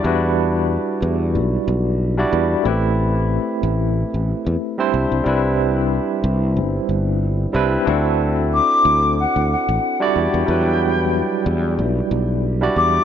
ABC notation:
X:1
M:4/4
L:1/16
Q:"Swing 16ths" 1/4=92
K:Em
V:1 name="Flute"
z16 | z16 | z16 | z4 d'4 f2 f4 g2- |
g6 z8 d'2 |]
V:2 name="Tine electric piano"
[G,DEFB]8- [G,DEFB]2 z3 [G,DEFd]3 | [A,CEGB]8- [A,CEGB]2 z3 [G,CDEc]3 | [G,CDEB]8- [G,CDEB]2 z4 [G,CDEB]2 | [CDEFA]8- [CDEFA]2 z3 [G,DEFd]3 |
[F,G,DEB]8- [F,G,DEB]2 z3 [G,DEFd]3 |]
V:3 name="Fretless electric bass" clef=bass
E,,4 z2 E,,2 B,,, z B,,,3 z E,, z | A,,,4 z2 A,,,2 z A,,, z E,, z2 C,, C,, | C,,4 z2 C,,2 G,,, z G,,,3 z C,, z | D,,4 z2 D,,2 z D,, z A,,, z2 E,, E,, |
E,,4 z2 E,,2 B,,, z B,,,3 z E,, z |]